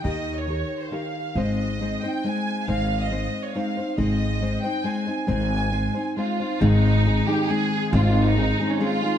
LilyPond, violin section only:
\new Staff \with { instrumentName = "Violin section" } { \time 3/4 \key aes \major \tempo 4 = 137 ees''8. des''4 c''16 f''4 | ees''4. g''8 aes''4 | f''8. ees''4 des''16 f''4 | ees''4. g''8 aes''4 |
aes''2 f'4 | ees'4. g'8 aes'4 | f'8. ees'4 des'16 f'4 | }